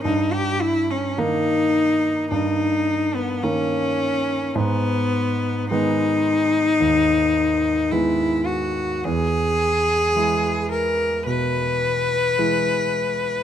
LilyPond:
<<
  \new Staff \with { instrumentName = "Cello" } { \time 4/4 \key gis \minor \tempo 4 = 53 dis'16 g'16 e'16 cis'16 dis'4 dis'8. b16 cis'4 | b4 dis'2 e'8 fis'8 | gis'4. ais'8 b'2 | }
  \new Staff \with { instrumentName = "Grand piano" } { \clef bass \time 4/4 \key gis \minor g,4 <dis ais>4 g,4 <dis ais>4 | gis,4 <dis gis b>4 dis,4 <dis gis b>4 | e,4 <e gis e'>4 b,4 <e gis e'>4 | }
>>